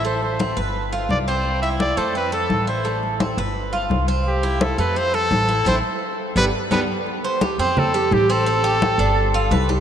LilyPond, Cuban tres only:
\new Staff \with { instrumentName = "Cuban tres" } { \time 4/4 \key c \major \tempo 4 = 171 a4 c'8 b'4 f'4 c'8~ | c'8 e'4 a8 c'8 a'4 e'8 | a4 c'8 b'4 f'4 c'8~ | c'8 e'4 a8 c'8 a'4 e'8 |
<a c' e'>8 r4. <g b d'>8 r8 <g b d'>8 r8 | r8 c''8 g'8 c'4 g'4 c'8 | c'8 g'4 d'4 f'8 b'8 g'8 | }